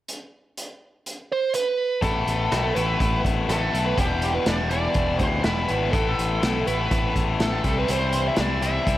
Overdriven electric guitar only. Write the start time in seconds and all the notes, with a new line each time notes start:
2.02 A2 E3 A3 B3 E4
2.51 A2 E3 A3 B3 E4
2.75 A2 E3 A3 B3 E4
2.99 A2 E3 A3 B3 E4
3.49 A2 E3 A3 B3 E4
3.73 A2 E3 A3 B3 E4
3.98 E2 B2 E3 G3 B3 E4
4.47 E2 B2 E3 G3 B3 E4
4.70 E2 B2 E3 G3 B3 E4
4.95 E2 B2 E3 G3 B3 E4
5.43 E2 B2 E3 G3 B3 E4
5.69 E2 B2 E3 G3 B3 E4
5.93 A2 E3 A3 B3 E4
6.42 A2 E3 A3 B3 E4
6.66 A2 E3 A3 B3 E4
6.90 A2 E3 A3 B3 E4
7.40 A2 E3 A3 B3 E4
7.64 C3 E3 G3 C4 E4
7.90 C3 E3 G3 C4 E4
8.38 C3 E3 G3 C4 E4
8.62 C3 E3 G3 C4 E4
8.87 C3 E3 G3 C4 E4